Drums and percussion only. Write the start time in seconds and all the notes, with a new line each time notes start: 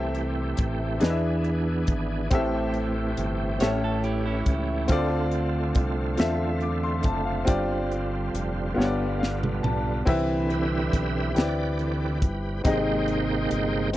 0.15 closed hi-hat
0.57 kick, closed hi-hat
1.01 snare, closed hi-hat
1.44 closed hi-hat
1.87 kick, closed hi-hat
2.31 kick, closed hi-hat
2.74 closed hi-hat
3.17 closed hi-hat
3.60 snare, closed hi-hat
4.04 closed hi-hat
4.46 kick, closed hi-hat
4.88 kick, closed hi-hat
5.32 closed hi-hat
5.75 kick, closed hi-hat
6.17 snare, closed hi-hat
6.61 closed hi-hat
7.03 kick, closed hi-hat
7.47 kick, closed hi-hat
7.92 closed hi-hat
8.35 closed hi-hat
8.80 snare
9.23 snare
9.43 mid tom
9.64 floor tom
10.07 kick, crash
10.50 closed hi-hat
10.93 kick, closed hi-hat
11.36 snare, closed hi-hat
11.79 closed hi-hat
12.22 kick, closed hi-hat
12.65 kick, closed hi-hat
13.08 closed hi-hat
13.51 closed hi-hat
13.93 closed hi-hat